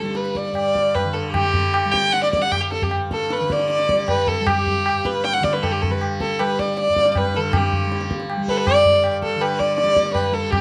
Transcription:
Already playing: G2 D3 G3 A4
0.02 G3, tabla te
0.15 B4, tabla te
0.25 tabla te
0.35 D5, tabla ke
0.45 tabla te
0.52 G2 D5, tabla na
0.75 tabla ke
0.95 B4, tabla na, tabla ge
1.04 D3
1.13 A4, tabla te
1.32 D3 G4, tabla na, tabla ge
1.54 tabla ge
1.74 tabla na
1.85 G3
1.91 G5, tabla ke
2.12 F#5, tabla te
2.23 D5, tabla te
2.32 D5, tabla ke
2.37 G3
2.42 F#5, tabla te
2.51 G5, tabla na, tabla ge
2.61 G4
2.72 A4, tabla te
2.82 G4, tabla ge
2.88 G2, tabla na
3.11 A4, tabla ke
3.30 B4, tabla te
3.40 D3, tabla te
3.50 D5, tabla ke
3.59 tabla te
3.70 D5, tabla te
3.80 tabla te
3.89 G3, tabla ke
3.98 tabla te
4.08 B4, tabla na, tabla ge
4.27 A4, tabla ge
4.41 G3
4.47 G4, tabla na, tabla ge
4.67 tabla ge
4.86 G2, tabla na
5.05 B4, tabla ke
5.24 G5, tabla te
5.33 F#5, tabla te
5.40 D3 D5, tabla ke
5.53 B4, tabla te
5.63 A4, tabla na, tabla ge
5.72 G4
5.82 A4, tabla ge
5.90 G3 B4
6.01 tabla na
6.21 A4, tabla ke
6.39 G3 B4, tabla na
6.59 D5, tabla ke
6.77 D5, tabla te
6.87 G2, tabla te
6.96 tabla ke
7.06 tabla te
7.11 D5, tabla na, tabla ge
7.17 B4
7.34 D3 A4, tabla te
7.53 G4, tabla na, tabla ge
7.73 tabla ge
7.87 G3
7.92 tabla te
8.01 tabla te
8.11 tabla ke
8.20 tabla te
8.30 tabla na
8.37 G3
8.48 A4 B4, tabla ke
8.53 B4 D5
8.67 tabla na, tabla ge
8.85 G2, tabla ge
9.04 tabla na
9.22 A4, tabla ke
9.35 D3
9.41 B4, tabla na
9.59 D5, tabla ke
9.77 D5, tabla te
9.83 G3
9.87 tabla te
9.96 tabla ke
10.06 tabla te
10.14 B4, tabla na, tabla ge
10.32 G3 A4, tabla te
10.51 G4, tabla na, tabla ge

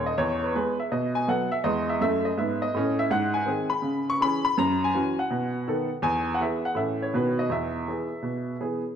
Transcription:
0.06 D#5
0.18 E2 C#5
0.44 B4
0.55 G#3 B3 G#4 B4
0.80 E5
0.92 B2 D#5
1.15 G#5
1.28 F#3 B3 A4 F#5
1.52 E5
1.64 E2 G#3 D#5
1.89 E5
2.01 F#2 A3 E5
2.25 D#5
2.37 G#2 B3 E5
2.62 D#5
2.74 A2 C#4
2.99 E5
3.10 G#2 F#5
3.34 G#5
3.46 D#3 C4 G#4
3.70 B5
3.82 C#3
4.10 C#6
4.21 E3 C#4 G#4 B5
4.45 B5
4.58 F#2 A#5
4.84 G#5
4.94 E3 C#4 F#4
5.19 F#5
5.31 B2
5.68 D#3 B3 A4
6.02 E2 G#5
6.34 F#5
6.40 E3 B3 G#4 E5
6.65 F#5
6.75 A2 E3 C#4 A4 E5
7.02 C#5
7.14 B2 D#3 B3 F#4 B4
7.39 D#5
7.50 E2 E5
7.88 E3 B3 G#4
8.23 B2
8.61 E3 B3 G#4

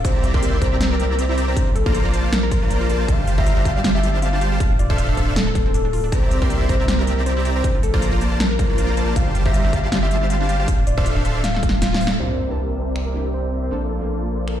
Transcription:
0.05 C2 C4 G4 C5 D5 E5 A#5, kick, closed hi-hat
0.15 E4
0.24 G4, closed hi-hat
0.34 C4 G4 A#4 D5 E5 C6, kick
0.43 G4, closed hi-hat
0.53 E4
0.62 C4 G4 A#4 C5 D5 E5 A#5, kick, closed hi-hat
0.72 E5
0.81 G4, snare, closed hi-hat
0.91 A#4
1.00 G4, closed hi-hat
1.10 E4
1.19 C4 C5, closed hi-hat
1.29 E4
1.38 C4 G4 D5 E5 A#5, closed hi-hat
1.48 C4 G4 A#4 C5 D5 E5 A#5
1.57 A#1 D4, kick, closed hi-hat
1.67 F4
1.75 A4, closed hi-hat
1.86 A#3 F4 A#4 C5 D5 A#5, kick
1.95 A4, closed hi-hat
2.05 F4
2.13 A#3 F4 A#4 C5 D5 A5, closed hi-hat
2.24 F5
2.32 A4 A#4, snare, closed hi-hat
2.43 A#4
2.51 A#3 F4 A4 C5 D5 A#5, kick, closed hi-hat
2.62 A#3 F4 C5 D5 A#5
2.70 D4, closed hi-hat
2.81 F4
2.89 A#3 F4 A4 C5 D5 A5, closed hi-hat
3.00 A#4
3.08 G1 G3 C4 G4 C5 F5 A5, kick, closed hi-hat
3.19 D4
3.27 F4, closed hi-hat
3.38 G3 G4 C5 E5 F5 A#5, kick
3.46 F4, closed hi-hat
3.57 D4
3.65 G3 G4 C5 F5 A5, kick, closed hi-hat
3.76 D5
3.84 F4, snare, closed hi-hat
3.95 G4 E5
4.03 F4, closed hi-hat
4.14 D4
4.22 C4 F5, closed hi-hat
4.33 D4
4.41 G3 F4 G4 C5 F5 A5, closed hi-hat
4.52 G3 G4 C5 F5 A5
4.60 D1 C4, kick, closed hi-hat
4.71 D4
4.79 F4 D5, closed hi-hat
4.90 D4 A4 C5 E5 F5, kick
4.98 F4, closed hi-hat
5.09 D4
5.17 D4 A4 C5 E5 F5, kick, closed hi-hat
5.28 D5
5.36 F4 A4, snare, closed hi-hat
5.47 A4
5.55 C5, kick, closed hi-hat
5.66 C4
5.74 D4, closed hi-hat
5.85 D4
5.93 F4, open hi-hat
6.04 D4
6.12 C2 C4 G4 C5 D5 E5 A#5, kick, closed hi-hat
6.23 E4
6.31 G4, closed hi-hat
6.42 C4 G4 A#4 D5 E5 C6, kick
6.50 G4, closed hi-hat
6.61 E4
6.69 C4 G4 A#4 C5 D5 E5 A#5, kick, closed hi-hat
6.80 E5
6.88 G4, snare, closed hi-hat
6.99 A#4
7.07 G4, closed hi-hat
7.18 E4
7.26 C4 C5, closed hi-hat
7.37 E4
7.45 C4 G4 D5 E5 A#5, closed hi-hat
7.56 C4 G4 A#4 C5 D5 E5 A#5
7.64 A#1 D4, kick, closed hi-hat
7.75 F4
7.83 A4, closed hi-hat
7.94 A#3 F4 A#4 C5 D5 A#5, kick
8.02 A4, closed hi-hat
8.13 F4
8.21 A#3 F4 A#4 C5 D5 A5, closed hi-hat
8.32 F5
8.40 A4 A#4, snare, closed hi-hat
8.51 A#4
8.59 A#3 F4 A4 C5 D5 A#5, kick, closed hi-hat
8.70 A#3 F4 C5 D5 A#5
8.78 D4, closed hi-hat
8.89 F4
8.97 A#3 F4 A4 C5 D5 A5, closed hi-hat
9.08 A#4
9.16 G1 G3 C4 G4 C5 F5 A5, kick, closed hi-hat
9.27 D4
9.35 F4, closed hi-hat
9.46 G3 G4 C5 E5 F5 A#5, kick
9.54 F4, closed hi-hat
9.64 D4
9.73 G3 G4 C5 F5 A5, kick, closed hi-hat
9.84 D5
9.92 F4, snare, closed hi-hat
10.03 G4 E5
10.11 F4, closed hi-hat
10.22 D4
10.30 C4 F5, closed hi-hat
10.40 D4
10.49 G3 F4 G4 C5 F5 A5, closed hi-hat
10.59 G3 G4 C5 F5 A5
10.68 D1 C4, kick, closed hi-hat
10.78 D4
10.87 F4 D5, closed hi-hat
10.97 D4 A4 C5 E5 F5, kick
11.06 F4, closed hi-hat
11.16 D4
11.25 D4 A4 C5 E5 F5, closed hi-hat
11.35 D5
11.44 F4 F5, snare, closed hi-hat
11.54 A4, snare
11.63 A4, kick, closed hi-hat
11.69 snare
11.73 D4
11.82 F4, snare, closed hi-hat
11.92 F4, snare
12.01 C5, open hi-hat
12.07 snare
12.11 A4
12.19 C2 A#3 C4 D4 E4 G4 A#4 C5 D5 E5, sub drop
12.47 A#3 D4 E4 A#4 A5
12.77 C5
12.96 finger snap
13.06 A#4
13.13 A#3 D4 E4
13.17 G4
13.34 C5
13.63 C5
13.71 A#1 A#3 C4 D4 F4 A4 C5 D5
13.91 A4
13.99 A#3 C4 D4 F4
14.48 A#4, finger snap

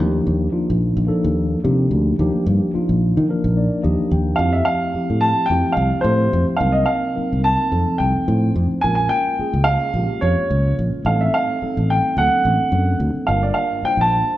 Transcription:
Already playing: F3 A#3 D4 D#4
0.00 D#2 G4
0.27 D#2
0.52 F3 A#3 D4 D#4 F4
0.70 A#1
0.97 A#1
1.07 F3 A#3 D4 D#4 A4, muted fingered electric bass stroke
1.24 D#2
1.63 C3 F3 A#3 D4 D#4 G4
1.91 D2
2.19 D#2 F3 A#3 D4 D#4 G4
2.46 G2
2.73 F3 A#3 D4 D#4 F4, muted fingered electric bass stroke
2.89 A#1
3.17 D#3
3.29 F3 A#3 D4 D#4 A#4
3.44 A#1
3.57 D5
3.82 D#2 F3 A#3 D4 D#4 G4 D#5
4.11 D#2 G5
4.36 F2 F3 A3 C4 E4 G4 F5
4.53 E5
4.65 F5
4.93 F3 A3 C4 E4 G4, muted fingered electric bass stroke
5.10 A2
5.21 A5
5.46 F3 A3 C4 G5
5.50 F2 E4 G4
5.72 F5
5.77 C2
5.92 muted fingered electric bass stroke
6.01 A2 F3 A3 C4 C5
6.05 E4 G4
6.33 F2
6.49 muted fingered electric bass stroke
6.57 C2 F#3 A#3 C4 D#4 F5
6.61 A#4
6.72 D#5
6.86 F5
7.15 F#3 A#3 C4 D#4 A#4, muted fingered electric bass stroke
7.33 C2
7.44 A5
7.71 F2 F3 A3 C4 D#4 A4
7.98 C2 G5
8.16 muted fingered electric bass stroke
8.26 A2 F3 A3 C4 D#4 C5
8.56 F2
8.71 muted fingered electric bass stroke
8.81 A#1 G#3 A#3 C#4 F4 A#4 G#5
8.95 G#5
9.09 G5
9.38 G#3 A#3 C#4 F4 G#4, muted fingered electric bass stroke
9.54 C#2
9.64 F5
9.94 A#1 G#3 A#3 C#4 F4 G4
10.21 F2 C#5
10.38 muted fingered electric bass stroke
10.49 C#2 G#3 A#3 C#4 F4 C#5
10.79 A#1
10.94 muted fingered electric bass stroke
11.05 A1 G3 A3 C4 D#4 A4 F5
11.21 E5
11.34 F5
11.62 G3 A3 C4 D#4 A4, muted fingered electric bass stroke
11.77 A1
11.90 G5
12.17 D2 F#3 A#3 C4 D4 A4 F#5
12.45 A1
12.60 muted fingered electric bass stroke
12.72 F#2 F#3 A#3 C4 D4 A4
13.00 D2
13.14 muted fingered electric bass stroke
13.27 G1 G3 A#3 D4 F4 A#4 F5
13.43 D5
13.54 F5
13.82 G3 A#3 D4 F4 C5 G5, muted fingered electric bass stroke
13.97 A#1 A5

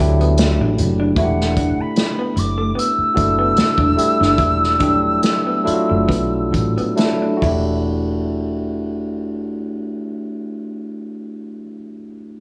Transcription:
Already playing: F#4
0.00 D2 F#3 A3 D4 E4 G4, kick
0.21 B3, closed hi-hat
0.37 snare, closed hi-hat
0.60 A1 D4
0.78 F#1, muted clean electric guitar stroke, closed hi-hat
1.00 D4
1.16 E1 A3 D4 E4 F#4, kick, closed hi-hat
1.21 G4 F#5
1.41 snare
1.57 D4, kick, closed hi-hat
1.79 B5, muted fingered electric bass stroke
1.96 snare, closed hi-hat
2.19 B3
2.36 F#1 D6, muted clean electric guitar stroke, closed hi-hat
2.58 A3
2.75 B3 E6, closed hi-hat
2.98 muted fingered electric bass stroke
3.15 F#1 A3 D4 E4 F#4 A4, muted clean electric guitar stroke, kick, closed hi-hat
3.39 B3
3.56 muted fingered electric bass stroke, snare, closed hi-hat
3.78 E1 D4, kick
3.96 G3 A3 D4 E4 G4, muted clean electric guitar stroke, closed hi-hat
4.21 F#1 D4, snare
4.38 E1 E4, kick, closed hi-hat
4.64 snare
4.79 F#3 A3 D4 E4 G4, kick, closed hi-hat
5.23 snare, closed hi-hat
5.47 B3
5.64 F#3 A3 D4 E4 F4, muted clean electric guitar stroke, muted fingered electric bass stroke, closed hi-hat
5.73 F#4
5.89 F#1 A3
6.08 B1 B3, kick, closed hi-hat
6.53 A1, muted clean electric guitar stroke, kick, closed hi-hat
6.78 B3, closed hi-hat
6.96 F#3 A3 D4 E4 A4, snare, closed hi-hat
7.22 D4
7.37 A3 F#4
7.42 E1 D4 E4, kick, ride
7.48 G4

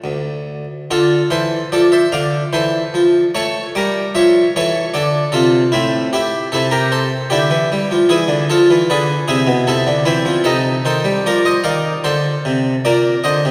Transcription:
0.04 D2
0.91 D3 F4 A4
1.31 E3 A4 C5
1.72 F3 A4 D5
1.92 C5 E5
2.12 D3 D5 F5
2.53 E3 A4 C5
2.94 F3
3.35 A3 A4 C#5
3.75 G3 A#4 D5
4.15 F3 C#5 E5
4.56 E3 A4 C#5
4.94 D3 A4 D5
5.32 C3 F4 A4
5.72 A2 C4 E4
6.13 E4 G4
6.52 C3 E4 A4
6.71 G4 A#4
6.92 A4 C5
7.30 D3 E4 G4
7.50 E3
7.72 G3
7.91 F3
8.09 E3 E4 G#4
8.28 D3
8.50 F3 F4 A4
8.70 E3
8.90 D3 G#4 B4
9.28 C3 E4 G#4
9.47 B2
9.67 C3 E4 A4
9.87 D3
10.05 E3 C4 E4
10.25 F3
10.44 C3 D#4 A4
10.85 D#3 A4 C5
11.04 G3
11.26 F3 A#4 D5
11.45 C5 D#5
11.64 D#3 D5 F5
12.04 D3 A4 C5
12.45 C3
12.85 A#2 A#4 D5
13.24 D3 C5 D#5
13.45 C3

